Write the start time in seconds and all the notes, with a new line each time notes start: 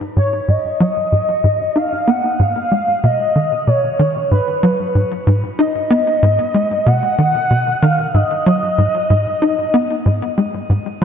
0.16 G#2 C#5
0.48 G#2 D#5
0.80 F#3
1.12 G#2
1.44 G#2
1.76 D#4 F5
2.08 B3 F#5
2.39 G#2 F5
2.71 G#3
3.04 B2 D#5
3.36 D#3
3.67 B2 C#5
3.99 D#3
4.31 G#2 B4
4.63 F#3
4.95 G#2
5.27 G#2
5.59 D#4 D#5
5.90 B3
6.23 G#2
6.54 G#3
6.86 B2 F#5
7.18 D#3
7.50 B2
7.82 D#3 F5
8.14 G#2 D#5
8.46 F#3
8.78 G#2
9.10 G#2
9.42 D#4
9.74 B3
10.06 G#2
10.38 G#3
10.70 G#2